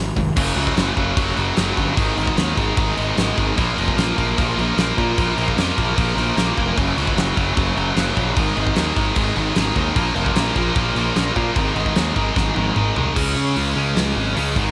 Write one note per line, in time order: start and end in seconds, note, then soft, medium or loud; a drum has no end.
0.00 0.10 G#1 medium
0.00 0.14 G#2 medium
0.00 0.14 D#3 medium
0.16 0.30 F1 medium
0.16 0.35 G#2 medium
0.16 0.35 D#3 medium
0.16 kick medium
0.16 open hi-hat medium
0.36 0.51 F#1 medium
0.36 0.55 F#2 loud
0.36 0.55 C#3 medium
0.36 0.56 F#3 loud
0.36 kick loud
0.36 crash loud
0.36 crash medium
0.56 0.70 C#2 medium
0.56 0.75 F#2 medium
0.56 0.75 C#3 medium
0.56 0.76 F#3 medium
0.56 crash medium
0.67 kick medium
0.76 0.90 F#1 medium
0.76 0.95 F#2 medium
0.76 0.95 C#3 medium
0.76 0.96 F#3 medium
0.76 snare loud
0.76 crash medium
0.96 1.11 F#1 medium
0.96 1.14 F#2 medium
0.96 1.15 C#3 medium
0.96 1.15 F#3 medium
0.96 kick medium
0.96 crash medium
1.16 1.31 F#1 medium
1.16 1.35 F#2 loud
1.16 1.36 C#3 loud
1.16 1.36 F#3 loud
1.16 kick loud
1.16 crash medium
1.36 1.51 F#1 medium
1.36 1.55 F#2 medium
1.36 1.56 C#3 medium
1.36 1.56 F#3 loud
1.36 crash medium
1.56 1.71 F#1 medium
1.56 1.75 F#2 medium
1.56 1.75 C#3 medium
1.56 1.76 F#3 medium
1.56 snare loud
1.56 crash medium
1.76 1.91 G1 medium
1.76 1.95 F#2 medium
1.76 1.96 C#3 medium
1.76 1.96 F#3 loud
1.76 kick medium
1.76 crash medium
1.95 2.11 G#1 medium
1.95 2.15 G#2 loud
1.95 2.15 D#3 loud
1.95 2.16 G#3 loud
1.95 kick loud
1.95 crash medium
2.16 2.31 G#1 medium
2.16 2.35 G#2 medium
2.16 2.36 D#3 medium
2.16 2.36 G#3 medium
2.16 crash medium
2.27 kick medium
2.37 2.52 D#2 medium
2.37 2.55 G#2 medium
2.37 2.55 D#3 medium
2.37 2.56 G#3 loud
2.37 snare loud
2.37 crash medium
2.56 2.71 G#1 medium
2.56 2.75 G#2 medium
2.56 2.75 D#3 medium
2.56 2.75 G#3 loud
2.56 kick medium
2.56 crash medium
2.76 2.91 G#1 medium
2.76 2.96 G#2 loud
2.76 2.96 D#3 loud
2.76 2.96 G#3 loud
2.76 kick loud
2.76 crash medium
2.97 3.12 G#1 medium
2.97 3.16 G#2 medium
2.97 3.16 D#3 loud
2.97 3.16 G#3 loud
2.97 crash medium
3.17 3.31 G#1 medium
3.17 3.36 G#2 medium
3.17 3.36 D#3 medium
3.17 3.37 G#3 medium
3.17 snare loud
3.17 crash medium
3.37 3.51 G#1 medium
3.37 3.56 G#2 medium
3.37 3.56 D#3 medium
3.37 3.56 G#3 loud
3.37 kick medium
3.37 crash medium
3.57 3.72 A#1 medium
3.57 3.77 A#2 medium
3.57 3.77 F3 loud
3.57 3.78 A#3 loud
3.57 kick loud
3.57 crash medium
3.77 3.91 F1 medium
3.77 3.96 A#2 medium
3.77 3.96 F3 medium
3.77 3.96 A#3 medium
3.77 crash medium
3.88 kick medium
3.96 4.11 A#1 medium
3.96 4.17 A#2 medium
3.96 4.18 F3 medium
3.96 4.18 A#3 loud
3.96 snare loud
3.96 crash medium
4.17 4.32 A#1 medium
4.17 4.36 A#2 medium
4.17 4.36 F3 medium
4.17 4.38 A#3 loud
4.17 kick medium
4.17 crash medium
4.37 4.52 A#1 medium
4.37 4.56 A#2 loud
4.37 4.56 F3 loud
4.37 4.58 A#3 loud
4.37 kick loud
4.37 crash medium
4.57 4.71 A#1 loud
4.57 4.76 A#2 medium
4.57 4.77 F3 medium
4.57 4.78 A#3 loud
4.57 crash medium
4.77 4.91 A#1 medium
4.77 4.96 A#2 medium
4.77 4.96 F3 medium
4.77 4.97 A#3 medium
4.77 snare loud
4.77 crash medium
4.97 5.16 A#2 medium
4.97 5.12 A#2 medium
4.97 5.17 F3 medium
4.97 5.17 A#3 medium
4.97 kick medium
4.97 crash medium
5.17 5.32 A#1 medium
5.17 5.36 A#2 medium
5.17 5.36 F3 loud
5.17 5.37 A#3 loud
5.17 kick loud
5.17 crash medium
5.37 5.51 A#1 medium
5.37 5.56 A#2 medium
5.37 5.57 F3 medium
5.37 5.58 A#3 medium
5.37 crash medium
5.48 kick medium
5.57 5.71 F2 medium
5.57 5.75 A#2 medium
5.57 5.75 F3 medium
5.57 5.77 A#3 medium
5.57 snare loud
5.57 crash medium
5.76 5.92 A#1 medium
5.76 5.95 A#2 medium
5.76 5.96 F3 medium
5.76 5.96 A#3 medium
5.76 kick medium
5.76 crash medium
5.96 6.11 A#1 medium
5.96 6.14 A#2 medium
5.96 6.15 F3 loud
5.96 6.16 A#3 loud
5.96 kick loud
5.96 crash medium
6.16 6.31 A#1 medium
6.16 6.35 A#2 medium
6.16 6.36 F3 medium
6.16 6.36 A#3 medium
6.16 crash medium
6.36 6.51 A#1 medium
6.36 6.55 A#2 medium
6.36 6.55 F3 medium
6.36 6.56 A#3 medium
6.36 snare loud
6.36 crash medium
6.56 6.71 F1 medium
6.56 6.76 A#2 medium
6.56 6.76 F3 medium
6.56 6.76 A#3 loud
6.56 kick medium
6.56 crash medium
6.76 6.91 F#1 medium
6.76 6.96 F#2 loud
6.76 6.96 C#3 loud
6.76 6.97 F#3 loud
6.76 kick loud
6.76 crash medium
6.97 7.11 C#2 medium
6.97 7.16 F#2 medium
6.97 7.16 C#3 medium
6.97 7.16 F#3 medium
6.97 crash medium
7.07 kick medium
7.17 7.31 F#1 medium
7.17 7.36 F#2 medium
7.17 7.36 C#3 medium
7.17 7.36 F#3 medium
7.17 snare loud
7.17 crash medium
7.37 7.51 F#1 medium
7.37 7.55 F#2 medium
7.37 7.55 C#3 medium
7.37 7.55 F#3 medium
7.37 kick medium
7.37 crash medium
7.56 7.71 F#1 medium
7.56 7.75 F#2 loud
7.56 7.75 C#3 loud
7.56 7.76 F#3 loud
7.56 kick loud
7.56 crash medium
7.77 7.91 F#1 medium
7.77 7.95 F#2 medium
7.77 7.95 C#3 loud
7.77 7.96 F#3 loud
7.77 crash medium
7.96 8.10 F#1 medium
7.96 8.14 F#2 medium
7.96 8.15 C#3 medium
7.96 8.15 F#3 loud
7.96 snare loud
7.96 crash medium
8.16 8.31 A#1 medium
8.16 8.35 F#2 medium
8.16 8.35 C#3 medium
8.16 8.35 F#3 medium
8.16 kick medium
8.16 crash medium
8.36 8.51 G#1 loud
8.36 8.54 G#2 loud
8.36 8.55 D#3 medium
8.36 8.55 G#3 loud
8.36 kick loud
8.36 crash medium
8.55 8.71 G#1 medium
8.55 8.74 G#2 medium
8.55 8.75 D#3 medium
8.55 8.75 G#3 medium
8.55 crash medium
8.67 kick medium
8.76 8.91 D#2 medium
8.76 8.95 G#2 medium
8.76 8.95 D#3 medium
8.76 8.95 G#3 medium
8.76 snare loud
8.76 crash medium
8.96 9.10 G#1 medium
8.96 9.14 G#2 medium
8.96 9.15 D#3 medium
8.96 9.16 G#3 medium
8.96 kick loud
8.96 crash medium
9.15 9.31 G#1 medium
9.15 9.34 G#2 loud
9.15 9.34 D#3 loud
9.15 9.35 G#3 loud
9.15 kick loud
9.15 crash medium
9.35 9.51 G#1 medium
9.35 9.54 G#2 medium
9.35 9.55 D#3 loud
9.35 9.55 G#3 loud
9.35 crash medium
9.55 9.71 G#1 medium
9.55 9.74 G#2 medium
9.55 9.75 D#3 medium
9.55 9.76 G#3 medium
9.55 snare loud
9.55 crash medium
9.75 9.90 D#2 medium
9.75 9.95 G#2 medium
9.75 9.95 D#3 medium
9.75 9.96 G#3 loud
9.75 kick medium
9.75 crash medium
9.95 10.10 A#1 medium
9.95 10.14 A#2 medium
9.95 10.14 F3 loud
9.95 10.14 A#3 loud
9.95 kick loud
9.95 crash medium
10.15 10.30 F1 medium
10.15 10.34 A#2 medium
10.15 10.34 F3 medium
10.15 10.34 A#3 medium
10.15 crash medium
10.26 kick medium
10.35 10.50 A#1 medium
10.35 10.53 A#2 medium
10.35 10.54 F3 medium
10.35 10.55 A#3 medium
10.35 snare loud
10.35 crash medium
10.55 10.70 A#1 medium
10.55 10.75 A#2 medium
10.55 10.75 F3 medium
10.55 10.75 A#3 loud
10.55 kick medium
10.55 crash medium
10.75 10.90 A#1 medium
10.75 10.95 A#2 loud
10.75 10.96 F3 loud
10.75 10.96 A#3 loud
10.75 kick loud
10.75 crash medium
10.96 11.10 A#1 loud
10.96 11.14 A#2 medium
10.96 11.14 F3 loud
10.96 11.15 A#3 loud
10.96 crash medium
11.15 11.30 A#1 medium
11.15 11.34 A#2 medium
11.15 11.35 F3 medium
11.15 11.35 A#3 medium
11.15 snare loud
11.15 crash medium
11.35 11.55 A#2 medium
11.35 11.50 A#2 medium
11.35 11.55 F3 loud
11.35 11.55 A#3 loud
11.35 kick medium
11.35 crash medium
11.55 11.70 G#1 loud
11.55 11.73 G#2 medium
11.55 11.74 D#3 loud
11.55 11.74 G#3 loud
11.55 kick loud
11.55 crash medium
11.75 11.90 G#1 medium
11.75 11.94 G#2 medium
11.75 11.95 D#3 medium
11.75 11.95 G#3 medium
11.75 crash medium
11.86 kick medium
11.96 12.10 D#2 medium
11.96 12.14 G#2 medium
11.96 12.14 D#3 medium
11.96 12.15 G#3 loud
11.96 snare loud
11.96 crash medium
12.15 12.30 G#1 medium
12.15 12.34 G#2 medium
12.15 12.35 D#3 medium
12.15 12.35 G#3 medium
12.15 kick medium
12.15 crash medium
12.35 12.50 G#1 medium
12.35 12.54 G#2 loud
12.35 12.54 D#3 loud
12.35 12.55 G#3 loud
12.35 kick loud
12.35 snare medium
12.55 12.70 G#1 medium
12.55 12.74 G#2 loud
12.55 12.75 D#3 loud
12.55 12.75 G#3 medium
12.55 high tom medium
12.76 12.90 G#1 medium
12.76 12.94 G#2 medium
12.76 12.95 D#3 medium
12.76 12.95 G#3 medium
12.76 mid tom medium
12.96 13.10 C2 medium
12.96 13.15 G#2 medium
12.96 13.14 D#3 medium
12.96 13.15 G#3 medium
12.96 floor tom medium
13.15 13.35 C#2 medium
13.15 13.74 C#3 medium
13.15 13.76 G#3 medium
13.15 13.74 C#4 medium
13.15 kick loud
13.15 crash loud
13.36 13.55 C#3 medium
13.56 13.76 C#2 medium
13.56 open hi-hat medium
13.75 13.95 C#2 medium
13.75 14.34 C#3 medium
13.75 14.35 G#3 medium
13.75 14.35 C#4 medium
13.96 14.15 C#2 medium
13.96 snare loud
13.96 open hi-hat medium
14.16 14.35 G#1 medium
14.35 14.55 C#2 medium
14.35 14.55 C#3 medium
14.35 14.55 G#3 medium
14.35 14.56 C#4 medium
14.35 open hi-hat medium
14.56 14.71 G#1 medium
14.56 14.71 G#2 medium
14.56 14.71 D#3 medium
14.56 14.71 G#3 medium
14.56 kick medium
14.56 crash medium